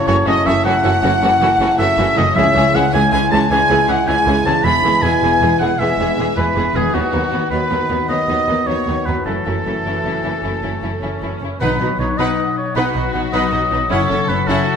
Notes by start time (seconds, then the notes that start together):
Already playing: F#2 C#3 A3 C#4 E4
0.07 F#1 F#2 E3 A3 C#4 F#4 C#5
0.26 F#1 F#2 E3 A3 C#4 F#4 D#5
0.45 F#1 F#2 E3 A3 C#4 F#4 E5
0.64 F#1 F#2 E3 A3 C#4 F#4 F#5
0.83 F#1 F#2 E3 A3 C#4 F#4
1.02 F#1 F#2 E3 A3 C#4 F#4
1.21 F#1 F#2 E3 A3 C#4 F#4
1.40 F#1 F#2 E3 A3 C#4 F#4
1.59 F#1 F#2 E3 A3 C#4 F#4
1.78 F#1 F#2 E3 A3 C#4 F#4 E5
1.98 F#1 F#2 E3 A3 C#4 F#4
2.16 F#1 F#2 C#3 E3 A3 C#4 F#4 D#5
2.22 G#3
2.27 E4
2.31 C#5
2.35 C#2 C#3 E3 G#3 C#4 E4 G#4 E5
2.54 C#2 E3 G#3 C#4 G#4
2.74 C#2 E3 G#3 C#4 G#4 F#5
2.93 C#2 C#3 E3 G#3 C#4 E4 G#4 G#5
3.11 C#2 E3 G#3 C#4 G#4 G#5
3.30 C#2 E3 G#3 C#4 G#4 A5
3.49 C#2 C#3 E3 G#3 C#4 E4 G#4 G#5
3.69 C#2 E3 G#3 C#4 G#4
3.88 C#2 E3 G#3 C#4 G#4 F#5
4.06 C#2 C#3 E3 G#3 C#4 E4 G#4 G#5
4.26 C#2 E3 G#3 C#4 G#4
4.45 C#2 E3 G#3 C#4 G#4 A5
4.51 G#3
4.56 E4
4.60 E1 G#3 B4 B5
4.64 E2 E3 G#3 B3 E4 G#4
4.83 E1 E2 E3 G#3 B3 G#4
5.02 E1 E2 E3 G#3 B3 G#4 G#5
5.22 E1 E2 E3 G#3 B3 G#4
5.40 E1 E2 E3 G#3 B3 G#4
5.59 E1 E2 E3 G#3 B3 G#4 F#5
5.77 E1 E2 E3 G#3 B3 E4 E5
5.81 G#4
5.98 E1 E2 E3 G#3 B3 G#4
6.17 E1 E2 E3 G#3 B3 G#4
6.36 E1 E2 E3 G#3 B3 E4 G#4 B4
6.55 E1 E2 E3 G#3 B3 G#4
6.74 E1 E2 D#3 E3 G#3 B3 G#4
6.80 B3
6.85 F#4
6.89 B4
6.93 D#2 D#3 F#3 B3 D#4 F#4
7.12 D#2 F#3 B3 D#4
7.31 D#2 F#3 B3 D#4
7.51 D#2 D#3 F#3 B3 D#4 F#4 B4
7.70 D#2 F#3 B3 D#4
7.89 D#2 F#3 B3 D#4
8.08 D#2 D#3 F#3 B3 D#4 F#4 D#5
8.28 D#2 F#3 B3 D#4
8.48 D#2 F#3 B3 D#4
8.67 D#2 F#3 B3 D#4 C#5
8.86 D#2 F#3 B3 D#4
9.06 D#2 F#2 F#3 B3 D#4 B4
9.12 C#4
9.16 E4
9.21 A4
9.26 F#1 F#2 E3 F#3 A3 C#4 E4 F#4 A4
9.45 F#1 F#2 F#3 A3 C#4 E4
9.65 F#1 F#2 F#3 A3 C#4 E4
9.85 F#1 F#2 E3 C#4 E4
10.05 F#1 F#2 C#4 E4
10.23 F#1 F#2 C#4 E4
10.43 F#1 F#2 A3 C#4 E4
10.62 F#1 F#2 C#4 E4
10.82 F#1 F#2 C#4 E4
11.02 F#1 F#2 C#4 E4
11.21 F#1 F#2 C#4 E4
11.41 F#1 F#2 C#4 E4
11.60 B1 B2 D#4 B4 F#5
11.70 F#3
11.80 B1 B2 B3 D#4 F#4 D#5
11.90 D#4
11.98 B1 B2 D#4 F#4 B4 C#5
12.09 B4
12.18 B1 B2 D#4 B4 D#5 F#5
12.27 F#5
12.37 D#5
12.47 F#5
12.56 C#5 D#5
12.66 F#5
12.75 B1 B2 D#4 F#4 B4 D#5 F#5
12.85 B4
12.94 B1 B2 D#4 F#4 D#5
13.03 F#3
13.13 B1 B2 B3 D#4 B4 F#5
13.23 F#3
13.32 B1 B2 B3 D#4 B4 D#5 F#5
13.42 F#3
13.51 B1 B2 B3 D#4 F#4 D#5
13.61 F#3
13.70 B1 B2 B3 D#4 B4
13.80 F#3
13.89 F#1 F#2 C#4 E4 A4 C#5 F#5
14.00 C#3
14.09 F#1 F#2 C#4 E5
14.18 E4
14.28 F#1 F#2 A3 C#4 F#4 B4 C#5
14.38 C#5
14.47 F#1 F#2 C#4 E4 F#4 A4 F#5
14.56 F#5